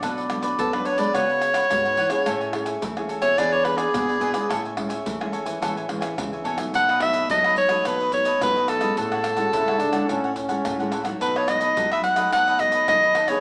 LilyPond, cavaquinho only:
\new Staff \with { instrumentName = "Cavaquinho" } { \time 4/4 \key b \dorian \tempo 4 = 107 <d' a' b' d''>16 <a' b' d''>8 <a' b' d''>8 <a' b' d''>16 <d' a' b' d''>16 <a' b' d''>16 <fis' b' cis'' fis''>16 <b' cis'' fis''>16 r16 <b' cis'' fis''>8 <b' cis'' fis''>16 <fis' b' cis'' fis''>16 <b' cis'' fis''>16 | <a' cis'' e'' gis''>16 <cis'' e'' gis''>8 <cis'' e'' gis''>8 <cis'' e'' gis''>16 <a' cis'' e'' gis''>16 <cis'' e'' gis''>16 <e' gis' b' d''>16 <gis' b' d''>16 r16 <gis' b' d''>8 <gis' b' d''>16 <e' gis' b' d''>16 <gis' b' d''>16 | <a' cis'' e'' gis''>16 <cis'' e'' gis''>8 <cis'' e'' gis''>8 <cis'' e'' gis''>16 <a' cis'' e'' gis''>16 <cis'' e'' gis''>16 <a' cis'' e'' gis''>16 <cis'' e'' gis''>16 r16 <cis'' e'' gis''>8 <cis'' e'' gis''>16 <a' cis'' e'' gis''>16 <cis'' e'' gis''>16 | <dis' a' b' dis''>16 <a' b' dis''>8 <a' b' dis''>16 <dis' a' b' dis''>16 <a' b' dis''>16 r16 <a' b' dis''>16 <dis' a' b' dis''>16 <a' b' dis''>16 r16 <a' b' dis''>8 <a' b' dis''>16 <dis' a' b' dis''>16 <a' b' dis''>16 |
<e' a' cis'' fis''>16 <a' cis'' fis''>8 <a' cis'' fis''>16 <e' a' cis'' fis''>16 <a' cis'' fis''>16 r16 <a' cis'' fis''>16 <e' a' cis'' fis''>16 <a' cis'' fis''>16 r16 <a' cis'' fis''>8 <a' cis'' fis''>16 <e' a' cis'' fis''>16 <a' cis'' fis''>16 | <dis' a' b' dis''>16 <a' b' dis''>8 <a' b' dis''>16 <dis' a' b' dis''>16 <a' b' dis''>16 r16 <a' b' dis''>16 <dis' a' b' dis''>16 <a' b' dis''>16 r16 <a' b' dis''>8 <a' b' dis''>16 <dis' a' b' dis''>16 <a' b' dis''>16 | }